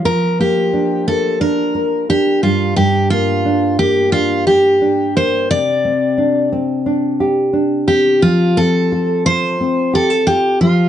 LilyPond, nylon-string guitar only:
\new Staff \with { instrumentName = "Nylon-string guitar" } { \time 4/4 \key f \major \tempo 4 = 88 f8 bes8 d'8 bes8 d'8 bes'8 d'8 g,8 | g,8 bes8 d'8 bes8 d'8 g'8 d'8 bes8 | c8 c'8 d'8 c'8 d'8 g'8 d'8 c'8 | f8 c'8 a'8 f'8 c'8 g'16 a'16 f'8 f8 | }